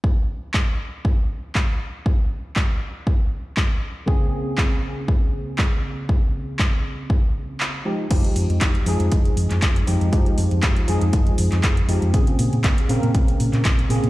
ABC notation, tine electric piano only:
X:1
M:4/4
L:1/8
Q:"Swing 16ths" 1/4=119
K:Fm
V:1 name="Tine electric piano"
z8 | z8 | [D,B,CA]8- | [D,B,CA]6- [D,B,CA] [F,A,EG] |
[F,A,EG]3 [F,A,EA]4 [F,A,EG] | [F,A,EG]3 [F,A,EA]4 [F,A,EG] | [D,B,CA]3 [D,B,CB]4 [D,B,CA] |]